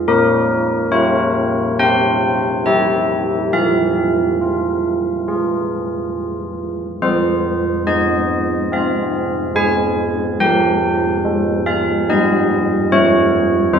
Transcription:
0.08 1.76 A#3 medium
0.08 0.89 A#4 medium
0.92 1.76 F4 soft
0.92 1.76 G4 soft
0.92 1.76 C#5 medium
1.79 3.49 C4 medium
1.79 2.63 G5 medium
2.66 3.49 E4 soft
2.66 3.49 G4 soft
2.66 3.50 E5 medium
3.53 6.98 F3 soft
3.53 6.12 F5 medium
4.41 5.27 F4 soft
5.28 6.98 F4 soft
5.28 6.98 G#4 soft
7.02 7.70 F3 medium
7.02 10.37 G#4 soft
7.02 7.84 C5 medium
7.87 8.55 G#3 soft
7.87 8.68 D#5 medium
8.72 9.40 C4 medium
8.72 9.54 F5 medium
9.55 10.23 G#3 medium
9.55 10.37 G#5 medium
10.40 11.08 F3 medium
10.40 13.71 A#4 soft
10.40 11.63 G5 medium
11.25 11.92 G#3 medium
11.66 12.07 F5 medium
12.09 12.76 G3 medium
12.09 12.89 D#5 medium
12.92 13.59 F3 medium
12.92 13.72 C#5 medium
13.73 13.79 E3 medium
13.73 13.79 A#4 soft
13.73 13.79 C5 medium

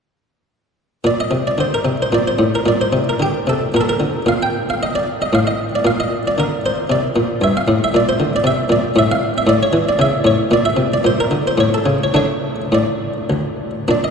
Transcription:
1.04 1.30 A#2 medium
1.04 1.19 D5 medium
1.20 1.47 D#5 medium
1.31 1.57 C3 medium
1.47 1.60 D5 medium
1.58 1.85 D3 medium
1.58 1.73 C5 medium
1.74 1.97 A#4 medium
1.85 2.11 C3 medium
2.02 2.14 C5 medium
2.12 2.38 A#2 medium
2.12 2.27 D5 medium
2.28 2.54 C5 medium
2.39 2.65 A2 medium
2.55 2.68 A#4 medium
2.66 2.92 A#2 medium
2.66 2.81 D5 medium
2.81 3.04 C5 medium
2.93 3.19 C3 medium
3.09 3.22 A#4 medium
3.20 3.46 D3 medium
3.20 3.48 G4 medium
3.47 3.72 C3 medium
3.47 3.71 A4 medium
3.74 3.99 A#2 medium
3.74 3.82 A#4 medium
3.81 3.88 A4 medium
3.89 4.22 A#4 medium
4.00 4.25 D3 medium
4.26 5.03 A#2 medium
4.26 4.41 F5 medium
4.43 4.68 G5 medium
4.70 4.82 F5 medium
4.83 4.95 D#5 medium
4.95 5.21 D5 medium
5.22 5.34 D#5 medium
5.33 5.70 A2 medium
5.33 5.47 F5 medium
5.47 5.69 D#5 medium
5.75 5.87 D5 medium
5.85 6.22 A#2 medium
5.85 5.99 F5 medium
6.00 6.25 D#5 medium
6.27 6.39 D5 medium
6.38 6.75 D3 medium
6.38 6.61 A#4 medium
6.66 6.87 C5 medium
6.90 7.14 C3 medium
6.90 7.42 D5 loud
7.16 7.40 A#2 medium
7.41 7.66 G2 medium
7.41 7.55 E5 loud
7.57 7.78 F5 medium
7.68 7.92 A2 medium
7.84 7.95 E5 medium
7.94 8.18 A#2 medium
7.94 8.07 D5 loud
8.09 8.33 C5 medium
8.20 8.43 D3 medium
8.36 8.46 D5 loud
8.44 8.68 C3 medium
8.44 8.67 E5 loud
8.69 8.94 A#2 medium
8.69 8.93 D5 medium
8.96 9.33 A2 medium
8.96 9.10 E5 loud
9.12 9.36 F5 loud
9.38 9.49 E5 medium
9.47 9.72 A2 medium
9.47 9.61 D5 loud
9.63 9.87 C#5 loud
9.73 9.98 E3 medium
9.89 10.00 D5 medium
9.99 10.24 C#3 medium
9.99 10.27 E5 loud
10.24 10.50 A2 medium
10.24 10.52 C#5 medium
10.51 10.76 A#2 medium
10.51 10.66 D5 loud
10.65 10.91 E5 loud
10.77 11.02 C3 medium
10.94 11.06 D5 medium
11.04 11.30 A#2 medium
11.04 11.19 C5 loud
11.20 11.46 A#4 medium
11.31 11.57 D3 medium
11.47 11.60 C5 medium
11.58 11.85 A2 medium
11.58 11.73 C#5 medium
11.74 11.98 A4 medium
11.86 12.14 C#3 medium
12.04 12.15 C#5 medium
12.14 12.55 D3 medium
12.14 12.61 A3 soft
12.14 12.61 D4 soft
12.14 12.74 C#5 loud
12.72 13.13 A2 medium
12.72 13.32 D5 medium
13.30 13.70 D2 medium
13.88 14.11 A#2 soft
13.88 14.11 D4 soft
13.88 14.03 D5 medium
14.04 14.11 D#5 medium

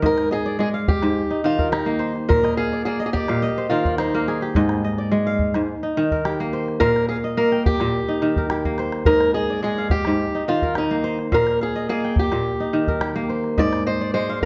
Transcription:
0.00 1.02 G#2 medium
0.00 0.52 D#4 medium
0.00 1.17 A#4 medium
0.00 0.31 D#5 medium
0.00 calabash thump medium
0.06 0.32 A#4 medium
0.18 calabash click soft
0.31 0.59 G#4 medium
0.31 1.38 D#5 medium
0.46 1.36 D5 medium
0.59 1.20 G#3 medium
0.59 0.68 G#4 medium
0.74 1.74 F5 medium
0.88 1.40 G4 medium
0.88 calabash thump medium
1.02 1.20 G#2 medium
1.02 calabash click soft
1.30 2.79 D#4 medium
1.44 2.33 D#3 medium
1.44 1.72 F4 medium
1.59 2.86 A#4 medium
1.59 calabash thump soft
1.72 2.12 D#4 medium
1.72 3.13 G4 medium
1.72 calabash click medium
1.86 2.86 A#3 medium
1.99 3.18 C5 medium
2.16 calabash click soft
2.29 3.28 A#2 medium
2.29 2.57 A#4 medium
2.29 calabash thump medium
2.43 2.79 D#5 medium
2.43 calabash click soft
2.57 2.83 G#4 medium
2.57 3.28 F5 medium
2.73 2.85 D5 medium
2.85 4.14 A#3 medium
2.85 3.05 G#4 medium
2.85 3.13 D5 medium
3.00 3.42 D#5 medium
3.06 3.13 G#4 medium
3.13 3.66 G4 medium
3.13 3.48 D5 medium
3.13 calabash thump medium
3.28 3.47 A#2 medium
3.28 4.29 F5 medium
3.28 calabash click soft
3.42 3.92 D#5 medium
3.58 3.99 C5 medium
3.70 4.59 D#3 medium
3.70 3.96 F4 medium
3.70 4.14 A#4 medium
3.85 4.62 D5 medium
3.85 calabash thump soft
3.98 4.38 D#4 medium
3.98 5.18 C5 medium
3.98 calabash click medium
4.14 6.07 A#3 medium
4.14 5.42 A#4 medium
4.28 5.64 G#4 medium
4.41 5.17 G4 medium
4.41 calabash click soft
4.55 5.54 G#2 medium
4.55 4.84 D#5 medium
4.55 calabash thump medium
4.69 calabash click soft
4.84 5.91 D#5 medium
4.98 5.89 D5 medium
5.11 5.72 G#3 medium
5.27 6.26 F5 medium
5.39 calabash thump medium
5.54 5.72 G#2 medium
5.54 calabash click soft
5.83 7.45 D#4 medium
5.97 6.85 D#3 medium
6.11 7.39 A#4 medium
6.11 calabash thump soft
6.25 7.66 G4 medium
6.25 calabash click medium
6.40 7.37 A#3 medium
6.53 7.72 C5 medium
6.68 calabash click soft
6.80 7.79 A#2 medium
6.80 7.08 A#4 loud
6.80 7.09 F5 medium
6.80 calabash thump medium
6.80 calabash click soft
6.96 calabash click soft
7.09 7.16 G#4 medium
7.09 8.09 F5 medium
7.24 8.31 D#5 medium
7.37 8.65 A#3 medium
7.37 7.66 A#4 medium
7.52 8.45 G5 medium
7.52 calabash click soft
7.66 8.46 G4 medium
7.66 calabash thump medium
7.80 7.98 A#2 medium
7.80 calabash click soft
7.94 calabash click soft
8.08 9.56 D#4 medium
8.22 9.11 D#3 medium
8.22 calabash click soft
8.36 9.65 A#4 soft
8.36 calabash thump soft
8.50 9.13 G4 medium
8.50 calabash click medium
8.65 10.58 A#3 medium
8.65 calabash thump soft
8.78 9.98 C5 medium
8.78 calabash click soft
8.92 calabash click soft
9.06 10.06 G#2 medium
9.06 9.34 A#4 loud
9.06 9.34 D#5 medium
9.06 calabash thump medium
9.21 calabash click soft
9.34 9.61 G#4 medium
9.34 10.42 D#5 medium
9.50 10.41 D5 medium
9.63 10.24 G#3 medium
9.63 9.91 G#4 medium
9.78 10.78 F5 medium
9.90 10.43 G4 medium
9.90 calabash thump medium
10.05 10.24 G#2 medium
10.05 calabash click soft
10.35 11.97 D#4 soft
10.48 11.37 D#3 medium
10.48 10.77 F4 medium
10.62 11.90 A#4 medium
10.62 calabash thump soft
10.75 11.17 D#4 medium
10.75 12.17 G4 medium
10.75 calabash click medium
10.91 11.89 A#3 medium
11.04 12.23 C5 medium
11.19 calabash click soft
11.32 12.31 A#2 medium
11.32 11.59 A#4 loud
11.32 11.61 F5 medium
11.32 calabash thump medium
11.47 calabash click soft
11.61 11.89 G#4 medium
11.61 12.61 F5 medium
11.76 12.83 D#5 medium
11.89 13.15 A#3 medium
11.89 12.18 G#4 medium
12.04 12.97 G5 medium
12.16 13.27 G4 medium
12.16 calabash thump medium
12.32 12.50 A#2 medium
12.32 calabash click soft
12.60 14.07 D#4 medium
12.73 13.63 D#3 medium
12.88 14.15 A#4 medium
12.88 calabash thump soft
13.01 13.64 G4 medium
13.01 calabash click medium
13.16 14.45 A#3 medium
13.29 14.45 C5 medium
13.44 calabash click soft
13.58 14.45 G#2 medium
13.58 13.86 D5 loud
13.58 13.86 D#5 medium
13.58 calabash thump medium
13.73 calabash click soft
13.86 14.13 C5 loud
13.86 14.45 D#5 medium
14.01 14.45 D5 medium
14.14 14.45 G#3 medium
14.14 14.42 C5 medium
14.29 14.45 F5 medium

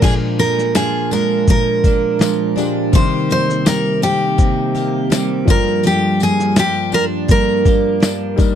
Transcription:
0.00 1.48 A#2 medium
0.00 0.74 F3 medium
0.00 0.38 F3 medium
0.00 2.52 G#3 medium
0.00 1.12 A#3 medium
0.00 1.84 A#3 soft
0.00 0.75 D4 medium
0.00 1.11 D4 soft
0.00 2.52 D4 medium
0.00 2.53 F4 medium
0.00 2.93 G#4 medium
0.00 0.13 G#4 medium
0.00 kick loud
0.00 crash medium
0.00 tambourine soft
0.00 shaker medium
0.04 2.54 A#4 medium
0.39 1.47 F3 medium
0.39 0.75 A#4 medium
0.39 tambourine medium
0.39 shaker soft
0.59 snare soft
0.59 shaker medium
0.75 2.18 F3 medium
0.75 1.84 D4 medium
0.75 1.12 G#4 medium
0.75 snare loud
0.75 tambourine medium
0.75 shaker medium
1.11 2.20 G#3 medium
1.11 2.55 D4 medium
1.11 1.46 A#4 medium
1.11 tambourine medium
1.11 shaker medium
1.47 3.02 A#2 medium
1.47 2.92 F3 medium
1.47 2.95 A#4 medium
1.47 kick medium
1.47 tambourine soft
1.47 shaker medium
1.84 4.41 A#3 medium
1.84 2.56 D4 medium
1.84 kick medium
1.84 tambourine soft
1.84 shaker soft
2.19 3.01 F3 medium
2.19 3.02 G#3 medium
2.19 snare loud
2.19 tambourine medium
2.19 shaker medium
2.56 2.93 G#3 medium
2.56 3.01 D4 medium
2.56 2.94 D4 medium
2.56 2.94 F4 medium
2.56 2.94 G4 medium
2.56 tambourine medium
2.56 shaker soft
2.92 4.37 C3 medium
2.92 5.47 D#3 medium
2.92 5.43 G3 medium
2.92 5.43 C4 medium
2.92 5.44 D#4 soft
2.92 5.84 G4 medium
2.92 5.45 A#4 medium
2.92 3.31 C5 medium
2.92 kick loud
2.92 tambourine soft
2.92 shaker medium
3.29 4.38 A#3 medium
3.29 3.67 C5 loud
3.29 tambourine medium
3.29 shaker soft
3.50 snare soft
3.50 shaker medium
3.65 5.10 G3 medium
3.65 4.74 G4 medium
3.65 4.01 A#4 medium
3.65 snare loud
3.65 tambourine medium
3.65 shaker medium
4.02 5.10 C4 medium
4.02 5.56 D#4 medium
4.02 5.50 G4 loud
4.02 tambourine soft
4.02 shaker medium
4.38 5.55 C3 medium
4.38 6.21 A#3 medium
4.38 kick medium
4.38 shaker medium
4.75 7.65 A#3 medium
4.75 5.87 G4 medium
4.75 tambourine soft
4.75 shaker soft
5.10 6.56 G3 medium
5.10 5.56 C4 medium
5.10 snare loud
5.10 tambourine medium
5.10 shaker medium
5.45 5.82 G2 medium
5.45 8.33 F3 medium
5.45 5.83 F3 medium
5.45 8.34 D4 medium
5.45 8.35 F4 medium
5.45 kick loud
5.45 tambourine soft
5.45 shaker soft
5.50 8.35 A#4 medium
5.50 5.86 A#4 loud
5.83 7.27 G2 medium
5.83 8.46 F3 medium
5.83 8.55 G4 medium
5.83 6.23 G4 medium
5.83 tambourine soft
5.83 shaker medium
6.20 7.30 A#3 medium
6.20 6.56 G#4 loud
6.20 tambourine soft
6.20 shaker soft
6.40 snare soft
6.40 shaker medium
6.56 7.99 F3 medium
6.56 7.65 G4 medium
6.56 6.92 G4 medium
6.56 snare loud
6.56 tambourine medium
6.56 shaker medium
6.92 8.55 D4 medium
6.92 8.01 D4 medium
6.92 7.04 A#4 loud
6.92 tambourine soft
6.92 shaker medium
7.28 8.36 G2 medium
7.28 8.39 A#3 medium
7.28 8.55 A#4 loud
7.28 kick medium
7.28 shaker medium
7.65 8.55 A#3 medium
7.65 8.55 G4 medium
7.65 kick loud
7.65 tambourine soft
7.65 shaker soft
8.00 8.45 F3 medium
8.00 8.55 D4 medium
8.00 snare loud
8.00 tambourine medium
8.00 shaker medium
8.36 8.55 G2 medium
8.36 8.55 G3 medium
8.36 8.55 A#3 medium
8.36 8.55 D4 medium
8.36 8.55 D#4 medium
8.36 8.55 A#4 medium
8.36 kick loud
8.36 tambourine soft
8.36 shaker soft

